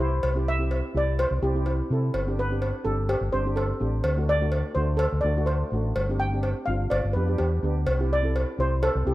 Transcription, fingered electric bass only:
0, 0, Header, 1, 2, 480
1, 0, Start_track
1, 0, Key_signature, 0, "major"
1, 0, Tempo, 477327
1, 238, Time_signature, 4, 2, 24, 8
1, 9194, End_track
2, 0, Start_track
2, 0, Title_t, "Fingered electric bass"
2, 0, Program_c, 0, 33
2, 0, Note_on_c, 0, 36, 83
2, 208, Note_off_c, 0, 36, 0
2, 233, Note_on_c, 0, 36, 85
2, 804, Note_off_c, 0, 36, 0
2, 951, Note_on_c, 0, 36, 95
2, 1243, Note_off_c, 0, 36, 0
2, 1315, Note_on_c, 0, 36, 88
2, 1409, Note_off_c, 0, 36, 0
2, 1428, Note_on_c, 0, 36, 85
2, 1811, Note_off_c, 0, 36, 0
2, 1914, Note_on_c, 0, 48, 86
2, 2105, Note_off_c, 0, 48, 0
2, 2150, Note_on_c, 0, 31, 88
2, 2723, Note_off_c, 0, 31, 0
2, 2866, Note_on_c, 0, 31, 91
2, 3160, Note_off_c, 0, 31, 0
2, 3228, Note_on_c, 0, 31, 95
2, 3324, Note_off_c, 0, 31, 0
2, 3350, Note_on_c, 0, 31, 85
2, 3732, Note_off_c, 0, 31, 0
2, 3829, Note_on_c, 0, 33, 92
2, 4022, Note_off_c, 0, 33, 0
2, 4064, Note_on_c, 0, 38, 85
2, 4638, Note_off_c, 0, 38, 0
2, 4783, Note_on_c, 0, 38, 97
2, 5077, Note_off_c, 0, 38, 0
2, 5153, Note_on_c, 0, 38, 92
2, 5247, Note_off_c, 0, 38, 0
2, 5267, Note_on_c, 0, 38, 82
2, 5650, Note_off_c, 0, 38, 0
2, 5749, Note_on_c, 0, 33, 95
2, 5941, Note_off_c, 0, 33, 0
2, 5987, Note_on_c, 0, 31, 96
2, 6560, Note_off_c, 0, 31, 0
2, 6711, Note_on_c, 0, 31, 100
2, 6903, Note_off_c, 0, 31, 0
2, 6952, Note_on_c, 0, 31, 95
2, 7052, Note_off_c, 0, 31, 0
2, 7079, Note_on_c, 0, 31, 85
2, 7170, Note_off_c, 0, 31, 0
2, 7191, Note_on_c, 0, 41, 76
2, 7409, Note_off_c, 0, 41, 0
2, 7438, Note_on_c, 0, 40, 81
2, 7653, Note_off_c, 0, 40, 0
2, 7670, Note_on_c, 0, 38, 75
2, 7888, Note_off_c, 0, 38, 0
2, 7910, Note_on_c, 0, 36, 91
2, 8482, Note_off_c, 0, 36, 0
2, 8633, Note_on_c, 0, 36, 90
2, 8923, Note_off_c, 0, 36, 0
2, 9002, Note_on_c, 0, 36, 95
2, 9092, Note_off_c, 0, 36, 0
2, 9114, Note_on_c, 0, 36, 86
2, 9194, Note_off_c, 0, 36, 0
2, 9194, End_track
0, 0, End_of_file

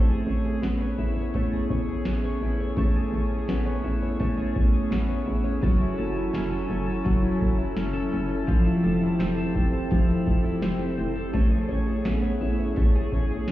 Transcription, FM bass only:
0, 0, Header, 1, 2, 480
1, 0, Start_track
1, 0, Tempo, 714286
1, 1861, Time_signature, 4, 2, 24, 8
1, 9083, End_track
2, 0, Start_track
2, 0, Title_t, "FM bass"
2, 0, Program_c, 0, 39
2, 0, Note_on_c, 0, 33, 95
2, 155, Note_off_c, 0, 33, 0
2, 181, Note_on_c, 0, 33, 88
2, 393, Note_off_c, 0, 33, 0
2, 420, Note_on_c, 0, 33, 98
2, 632, Note_off_c, 0, 33, 0
2, 661, Note_on_c, 0, 33, 87
2, 873, Note_off_c, 0, 33, 0
2, 906, Note_on_c, 0, 33, 99
2, 1115, Note_off_c, 0, 33, 0
2, 1144, Note_on_c, 0, 33, 86
2, 1354, Note_off_c, 0, 33, 0
2, 1380, Note_on_c, 0, 33, 88
2, 1592, Note_off_c, 0, 33, 0
2, 1621, Note_on_c, 0, 33, 86
2, 1832, Note_off_c, 0, 33, 0
2, 1861, Note_on_c, 0, 33, 98
2, 2072, Note_off_c, 0, 33, 0
2, 2100, Note_on_c, 0, 33, 90
2, 2312, Note_off_c, 0, 33, 0
2, 2344, Note_on_c, 0, 33, 101
2, 2554, Note_off_c, 0, 33, 0
2, 2583, Note_on_c, 0, 33, 89
2, 2793, Note_off_c, 0, 33, 0
2, 2825, Note_on_c, 0, 33, 93
2, 3035, Note_off_c, 0, 33, 0
2, 3065, Note_on_c, 0, 33, 84
2, 3275, Note_off_c, 0, 33, 0
2, 3298, Note_on_c, 0, 33, 89
2, 3511, Note_off_c, 0, 33, 0
2, 3547, Note_on_c, 0, 33, 94
2, 3756, Note_off_c, 0, 33, 0
2, 3785, Note_on_c, 0, 30, 112
2, 3995, Note_off_c, 0, 30, 0
2, 4029, Note_on_c, 0, 30, 90
2, 4237, Note_off_c, 0, 30, 0
2, 4269, Note_on_c, 0, 30, 94
2, 4477, Note_off_c, 0, 30, 0
2, 4507, Note_on_c, 0, 30, 95
2, 4716, Note_off_c, 0, 30, 0
2, 4744, Note_on_c, 0, 30, 94
2, 4954, Note_off_c, 0, 30, 0
2, 4985, Note_on_c, 0, 30, 86
2, 5195, Note_off_c, 0, 30, 0
2, 5222, Note_on_c, 0, 30, 86
2, 5433, Note_off_c, 0, 30, 0
2, 5464, Note_on_c, 0, 30, 94
2, 5674, Note_off_c, 0, 30, 0
2, 5704, Note_on_c, 0, 29, 102
2, 5914, Note_off_c, 0, 29, 0
2, 5944, Note_on_c, 0, 29, 91
2, 6154, Note_off_c, 0, 29, 0
2, 6185, Note_on_c, 0, 29, 99
2, 6395, Note_off_c, 0, 29, 0
2, 6423, Note_on_c, 0, 29, 97
2, 6633, Note_off_c, 0, 29, 0
2, 6663, Note_on_c, 0, 29, 105
2, 6874, Note_off_c, 0, 29, 0
2, 6902, Note_on_c, 0, 29, 85
2, 7113, Note_off_c, 0, 29, 0
2, 7140, Note_on_c, 0, 29, 93
2, 7352, Note_off_c, 0, 29, 0
2, 7383, Note_on_c, 0, 29, 92
2, 7594, Note_off_c, 0, 29, 0
2, 7620, Note_on_c, 0, 33, 101
2, 7832, Note_off_c, 0, 33, 0
2, 7858, Note_on_c, 0, 33, 91
2, 8071, Note_off_c, 0, 33, 0
2, 8101, Note_on_c, 0, 33, 102
2, 8312, Note_off_c, 0, 33, 0
2, 8341, Note_on_c, 0, 33, 90
2, 8553, Note_off_c, 0, 33, 0
2, 8583, Note_on_c, 0, 33, 103
2, 8794, Note_off_c, 0, 33, 0
2, 8819, Note_on_c, 0, 33, 85
2, 9031, Note_off_c, 0, 33, 0
2, 9063, Note_on_c, 0, 33, 89
2, 9083, Note_off_c, 0, 33, 0
2, 9083, End_track
0, 0, End_of_file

